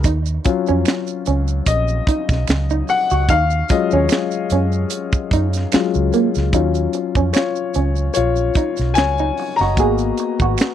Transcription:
0.04 fingered electric bass D#2, clean electric guitar D#4, kick, closed hi-hat, maracas
0.26 maracas
0.45 upright piano F#3 C#4 F4, muted clean electric guitar stroke, kick, closed hi-hat, maracas
0.67 fingered electric bass F2, clean electric guitar C#4, maracas
0.85 finger snap, snare, closed hi-hat, maracas
0.88 finger snap
1.07 maracas
1.26 fingered electric bass C#2, clean electric guitar C#4, closed hi-hat, maracas
1.48 maracas
1.66 fingered electric bass A#1, upright piano D#5, kick, closed hi-hat, maracas
1.88 maracas
2.07 clean electric guitar D#4, kick, closed hi-hat
2.29 fingered electric bass B1, kick, snare, maracas
2.48 fingered electric bass C#2, finger snap, snare, closed hi-hat, maracas
2.50 finger snap
2.70 clean electric guitar D#4, maracas
2.88 upright piano F#5, muted clean electric guitar stroke, open hi-hat, maracas
3.10 fingered electric bass C#2, clean electric guitar F#4, maracas
3.29 fingered electric bass D#2, clean electric guitar D#4, upright piano F5, kick, closed hi-hat, maracas
3.50 maracas
3.69 upright piano F#3 G#3 C#4 F4 D#5, muted clean electric guitar stroke, kick, closed hi-hat, maracas
3.91 fingered electric bass D#2, clean electric guitar C#4, upright piano C#5, maracas
4.09 finger snap, snare, closed hi-hat, maracas
4.13 finger snap
4.31 maracas
4.50 fingered electric bass F#2, clean electric guitar C#4, closed hi-hat, maracas
4.72 maracas
4.90 closed hi-hat, maracas
5.13 muted fingered electric bass stroke, kick, maracas
5.31 fingered electric bass F#2, clean electric guitar D#4, kick, closed hi-hat
5.53 snare, closed hi-hat, maracas
5.72 upright piano F#3 G#3 C#4 F4, finger snap, muted fingered electric bass stroke, snare, closed hi-hat, maracas
5.75 finger snap
5.94 fingered electric bass C#2, maracas
6.13 clean electric guitar A#3, closed hi-hat, maracas
6.35 fingered electric bass C#2, snare, maracas
6.53 fingered electric bass D#2, upright piano F#3 C#4 F4, clean electric guitar D#4, kick, closed hi-hat, maracas
6.74 closed hi-hat, maracas
6.93 muted clean electric guitar stroke, closed hi-hat, maracas
7.15 fingered electric bass F2, clean electric guitar C#4, kick, maracas
7.33 upright piano F4 C#5, finger snap, snare, closed hi-hat, maracas
7.37 finger snap
7.56 maracas
7.74 fingered electric bass C#2, clean electric guitar C#4, closed hi-hat, maracas
7.96 maracas
8.14 fingered electric bass A#1, upright piano F4 C#5, closed hi-hat, maracas
8.36 maracas
8.54 clean electric guitar D#4, kick, closed hi-hat, maracas
8.77 fingered electric bass B1, snare, closed hi-hat, maracas
8.94 fingered electric bass C#2, upright piano C#5 G#5, finger snap, snare, closed hi-hat, maracas
8.98 finger snap
9.18 clean electric guitar D#4, maracas
9.37 muted clean electric guitar stroke, open hi-hat
9.56 upright piano D#5 A#5, maracas
9.61 fingered electric bass F#1, clean electric guitar F#4, snare
9.77 fingered electric bass G#1, upright piano A#3 B3 F#4, clean electric guitar G#4, kick, closed hi-hat, maracas
9.98 closed hi-hat, maracas
10.18 muted clean electric guitar stroke, closed hi-hat, maracas
10.40 fingered electric bass G#1, clean electric guitar F#4, kick, maracas
10.58 finger snap, snare, closed hi-hat, maracas
10.62 finger snap

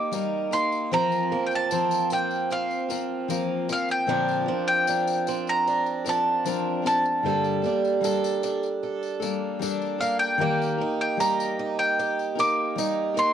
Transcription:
Already playing: steel-string acoustic guitar D#3 A#3 D#4 G4 A#4, mandolin D6
0.12 steel-string acoustic guitar G3 A#3 D#4 A#4, tambourine
0.51 steel-string acoustic guitar A#3 D#4 A#4, mandolin C6, tambourine
0.72 tambourine
0.91 steel-string acoustic guitar F3 C4 F4 A#4, mandolin A#5
1.12 tambourine
1.31 steel-string acoustic guitar A#3 C4 F4 A#4
1.46 mandolin G5
1.51 tambourine
1.55 mandolin A5
1.71 steel-string acoustic guitar F3 C4 F4 A#4, tambourine
1.91 tambourine
2.10 steel-string acoustic guitar A#3, mandolin G5, tambourine
2.31 tambourine
2.50 steel-string acoustic guitar C4, mandolin F5, tambourine
2.71 tambourine
2.89 steel-string acoustic guitar F3 C4 F4 A#4, tambourine
3.28 steel-string acoustic guitar F3 A#3 C4 F4 A#4, tambourine
3.68 steel-string acoustic guitar F3 C4 F4 A#4, tambourine
3.72 mandolin F5
3.88 mandolin G5, tambourine
4.07 steel-string acoustic guitar A#2 D3 F3 C4 D4 A#4
4.28 tambourine
4.46 steel-string acoustic guitar F3 C4 D4 A#4
4.67 mandolin G5, tambourine
4.87 steel-string acoustic guitar F3 C4 D4 A#4, tambourine
5.07 tambourine
5.27 steel-string acoustic guitar C4, tambourine
5.47 mandolin A#5, tambourine
5.67 steel-string acoustic guitar D4, tambourine
5.86 tambourine
6.05 steel-string acoustic guitar F3 C4 D4 A#4, tambourine
6.09 mandolin A5
6.44 steel-string acoustic guitar F3 C4 D4 A#4, tambourine
6.82 steel-string acoustic guitar F3 C4 D4 A#4, tambourine
6.87 mandolin A5
7.05 tambourine
7.23 steel-string acoustic guitar G2 D3 G3 A#3 D4 A4, tambourine
7.44 tambourine
7.62 steel-string acoustic guitar G3 A#3 D4 A4, tambourine
7.84 tambourine
8.01 steel-string acoustic guitar G3 A#3 D4 A4, tambourine
8.24 tambourine
8.43 steel-string acoustic guitar D4, tambourine
8.63 tambourine
8.83 steel-string acoustic guitar A4, tambourine
9.03 tambourine
9.20 steel-string acoustic guitar G3 A#3 D4 A4, tambourine
9.59 steel-string acoustic guitar G3 A#3 D4 A4, tambourine
9.82 tambourine
9.98 steel-string acoustic guitar G3 A#3 D4 A4, mandolin F5, tambourine
10.19 mandolin G5, tambourine
10.38 steel-string acoustic guitar D#3 G3 A#3 D#4 A#4
10.42 steel-string acoustic guitar G4
10.62 tambourine
10.78 steel-string acoustic guitar A#3 D#4 A#4
11.01 mandolin G5
11.17 steel-string acoustic guitar G3 A#3 D#4 G4 A#4, mandolin A#5, tambourine
11.40 tambourine
11.59 steel-string acoustic guitar D#4
11.79 mandolin G5, tambourine
11.99 steel-string acoustic guitar G4, tambourine
12.19 tambourine
12.35 steel-string acoustic guitar A#3 D#4 A#4, tambourine
12.40 mandolin D6
12.75 steel-string acoustic guitar G3 A#3 D#4 A#4, tambourine
13.14 steel-string acoustic guitar A#3 D#4 A#4, tambourine
13.19 mandolin C6

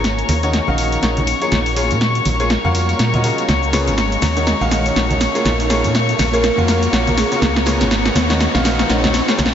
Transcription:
Already playing: fm bass G#1, ambient pad C#4 G#4 D#5, string section C#5 C#6, riser
0.04 snare, closed hi-hat, tambourine
0.19 closed hi-hat
0.29 fm bass D#2, ambient pad D#4, open hi-hat, tambourine, high conga
0.43 grand piano D#3 D#4 F#4 A#4 C#5, closed hi-hat, tambourine
0.53 snare, closed hi-hat, tambourine
0.67 fm bass A#1, grand piano D#3 D#4 F#4 A#4 F5, high conga
0.74 ambient pad A#4, open hi-hat
0.78 tambourine
0.92 closed hi-hat, tambourine
1.02 fm bass A#1, grand piano D#4 F#4 A#4 C#5, snare, closed hi-hat, tambourine
1.17 closed hi-hat, high conga
1.27 open hi-hat, tambourine
1.42 grand piano A#3 F4 G#4 A#4 C#5, closed hi-hat, tambourine
1.51 fm bass A#1, snare, closed hi-hat, tambourine, high conga
1.63 ambient pad A#5, open hi-hat
1.71 ambient pad F5
1.76 grand piano A#3 F4 G#4 A#4 C#5, open hi-hat, tambourine
1.84 ambient pad C#6
1.91 fm bass A#2, closed hi-hat, tambourine, high conga
2.01 snare, closed hi-hat, tambourine
2.15 closed hi-hat
2.25 fm bass A#1, open hi-hat, tambourine, high conga
2.40 grand piano A#3 F4 G#4 A#4 C#5, closed hi-hat, tambourine
2.50 ambient pad A#3, snare, closed hi-hat, tambourine
2.65 fm bass F2, grand piano A#3 F4 F#4 A#4 F5, high conga
2.75 open hi-hat, tambourine
2.89 closed hi-hat, tambourine
2.96 fm bass A#2, ambient pad C#5 G#5, snare, closed hi-hat
3.00 tambourine
3.14 grand piano A#3 F4 F#4 A#4 D#5, closed hi-hat, high conga
3.24 grand piano C#3 F4 F#4 A#4 D#5, open hi-hat, tambourine
3.38 closed hi-hat, tambourine
3.48 fm bass C#2, ambient pad C#4, snare, closed hi-hat, tambourine, high conga, shaker
3.63 shaker
3.73 grand piano C#3 F4 G#4 B4 C#5, snare, open hi-hat, tambourine, shaker
3.83 ambient pad G#4 D#5
3.87 fm bass G#1, closed hi-hat, tambourine, high conga, shaker
3.98 snare, closed hi-hat, tambourine, shaker
4.12 closed hi-hat, shaker
4.22 fm bass D#2, ambient pad D#4, snare, open hi-hat, tambourine, high conga, shaker
4.37 grand piano D#3 D#4 F#4 A#4 C#5, ambient pad A#4, closed hi-hat, tambourine, shaker
4.44 ambient pad F#4, snare, closed hi-hat, tambourine, shaker
4.61 fm bass A#1, grand piano D#3 D#4 F#4 A#4 F5, high conga, shaker
4.71 snare, open hi-hat, tambourine, shaker
4.85 vibraphone C#5, closed hi-hat, tambourine, shaker
4.96 fm bass A#1, grand piano D#4 F#4 A#4 C#5, snare, closed hi-hat, tambourine, shaker
5.10 closed hi-hat, high conga, shaker
5.21 snare, open hi-hat, tambourine, shaker
5.29 ambient pad F5
5.35 grand piano A#3 F4 G#4 A#4 C#5, closed hi-hat, tambourine, shaker
5.45 fm bass A#1, ambient pad A#5, snare, closed hi-hat, tambourine, high conga, shaker
5.60 open hi-hat, shaker
5.70 grand piano A#3 F4 G#4 A#4 C#5, snare, open hi-hat, tambourine, shaker
5.77 ambient pad C#6
5.84 fm bass A#2, closed hi-hat, tambourine, high conga, shaker
5.95 snare, closed hi-hat, tambourine, shaker
6.09 closed hi-hat, shaker
6.19 fm bass A#1, snare, open hi-hat, tambourine, high conga, shaker
6.33 grand piano A#3 F4 G#4 A#4 C#5, vibraphone A#4, closed hi-hat, tambourine, shaker
6.43 ambient pad A#3, vibraphone A#4, snare, closed hi-hat, tambourine, shaker
6.57 fm bass F2, grand piano A#3 F4 F#4 A#4 F5, high conga, shaker
6.68 snare, open hi-hat, tambourine, shaker
6.82 closed hi-hat, tambourine, shaker
6.89 fm bass A#1, grand piano A#3 F4 F#4 A#4 C#5, ambient pad C#5 G#5, snare, closed hi-hat, tambourine
6.93 shaker
7.07 closed hi-hat, high conga, shaker
7.17 vibraphone G#4, snare, open hi-hat, tambourine, shaker
7.32 grand piano C#3 F4 F#4 A#4 C#5, closed hi-hat, tambourine, shaker
7.42 fm bass C#2, ambient pad C#4, snare, closed hi-hat, tambourine, high conga, shaker
7.56 snare, shaker
7.66 grand piano C#3 F4 G#4 B4 C#5, snare, open hi-hat, tambourine, shaker
7.72 ambient pad G#4
7.77 ambient pad D#5
7.81 fm bass G#1, snare, closed hi-hat, tambourine, high conga, shaker
7.91 snare, closed hi-hat, tambourine, shaker
8.06 snare, closed hi-hat, shaker
8.15 fm bass D#2, ambient pad D#4, snare, open hi-hat, tambourine, high conga, shaker
8.30 grand piano D#3 D#4 F#4 A#4 C#5, snare, closed hi-hat, tambourine, shaker
8.40 snare, closed hi-hat, shaker
8.55 fm bass A#1, grand piano D#3 D#4 F#4 A#4 F5, snare, high conga, shaker
8.61 ambient pad A#4, snare, open hi-hat, tambourine
8.65 shaker
8.79 snare, closed hi-hat, tambourine, shaker
8.89 fm bass A#1, grand piano D#4 F#4 A#4 C#5, snare, closed hi-hat, tambourine, shaker
9.04 snare, closed hi-hat, high conga, shaker
9.14 snare, open hi-hat, tambourine, shaker
9.28 grand piano A#3 F4 G#4 A#4 C#5, snare, closed hi-hat, tambourine, shaker
9.39 fm bass A#1, snare, closed hi-hat, tambourine, noise sweep, high conga, shaker
9.46 snare

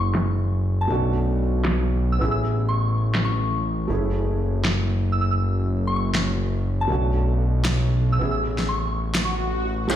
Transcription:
Already playing: analog synth bass F#1, felt piano A3 C#4 E4 G#4
0.15 finger snap, snare
0.81 synth bell A5
0.88 analog synth bass B1, felt piano A3 C#4 D4
0.92 felt piano F#4
1.65 finger snap, snare
2.12 synth bell E6
2.19 analog synth bass A1, felt piano B3 C#4 E4, synth bell E6
2.23 felt piano G#4
2.31 synth bell E6
2.69 synth bell C#6
3.15 finger snap, snare
3.25 synth bell C#6
3.88 analog synth bass F#1, felt piano A3 C#4 E4 G#4
4.65 finger snap, snare
5.12 synth bell E6
5.21 synth bell E6
5.31 synth bell E6
5.87 synth bell C#6
5.96 synth bell C#6
6.15 finger snap, snare
6.81 synth bell A5
6.88 analog synth bass B1, felt piano A3 C#4 D4 F#4
7.65 finger snap, snare
8.12 synth bell E6
8.19 analog synth bass A1, felt piano B3 C#4 E4 G#4, synth bell E6
8.31 synth bell E6
8.59 snare
8.69 synth bell C#6
9.15 finger snap, snare, swell
9.25 synth bell C#6
9.88 analog synth bass F#1, felt piano A3 C#4 E4, supersaw synth A3 E4 G#4 C#5 F#5, clap, closed hi-hat

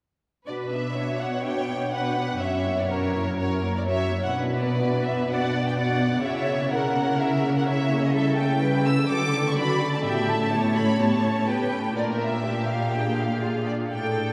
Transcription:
0.47 cello section B2, viola section D4 F#4, violin section B4 D5
0.72 viola section B3 D4, violin section E5
0.97 viola section D4 F#4, violin section C#5
1.20 viola section B3 D4, violin section F#5
1.44 viola section D4 F#4, violin section G5
1.69 viola section B3 D4
1.92 viola section D4 F#4, violin section B4 F#5
2.18 viola section B3 D4
2.40 cello section F#2, viola section C#4 F#4, violin section C#5 E5
2.66 viola section A#3 E4
2.78 violin section D5
2.89 viola section C#4 F#4, violin section A#4 C#5
3.14 viola section A#3 E4
3.38 viola section C#4 F#4, violin section A#4 C#5
3.63 viola section A#3 E4
3.76 violin section D5
3.86 viola section C#4 F#4, violin section C#5 E5
4.10 viola section A#3 E4
4.24 violin section F#5
4.34 cello section B2, viola section D4 F#4, violin section B4
4.57 viola section B3 D4, violin section D5
4.82 viola section D4 F#4
5.05 viola section B3 D4, violin section E5
5.29 viola section D4 F#4, violin section D5 F#5
5.53 viola section B3 D4
5.67 violin section G5
5.76 viola section D4 F#4, violin section D5 F#5
6.00 viola section B3 D4
6.23 cello section C#3, viola section C#4 E4, violin section C#5 E5
6.48 viola section A#3 C#4
6.71 viola section C#4 E4, violin section A#4 F#5
6.95 viola section A#3 C#4
7.19 viola section C#4 E4, violin section E5
7.43 viola section A#3 C#4
7.57 violin section F#5
7.67 viola section C#4 E4, violin section C#5 E5
7.90 viola section A#3 C#4
8.04 violin section D#5
8.14 viola section G3 E4, violin section A4 E5
8.37 viola section A3 C#4, violin section G5
8.61 viola section G3 E4, violin section B4
8.85 viola section A3 C#4, violin section E6
9.09 cello section D3, viola section F#3 F#4, violin section A4 D6
9.32 viola section A3 A4
9.47 violin section C#6
9.56 viola section F#3 F#4, violin section D5 B5
9.80 viola section A3 A4
9.94 violin section A5
10.04 cello section A2, viola section B3 G4, violin section E5 G5
10.27 viola section C#4 A4, violin section A5
10.52 viola section B3 G4, violin section C#5
10.76 viola section C#4 A4, violin section B5
11.00 viola section B3 G4, violin section A5
11.24 viola section C#4 A4
11.47 viola section B3 G4, violin section B4 G5
11.71 viola section C#4 A4
11.95 cello section A#2, viola section D4 F4, violin section A#4 D5
12.19 violin section E5
12.44 viola section F4, violin section G4
12.69 violin section F5
12.92 viola section D4 G#4, violin section G5
13.17 violin section F5
13.42 violin section F4
13.66 violin section D5
13.92 cello section A2, viola section D4 A4, violin section A4 G5

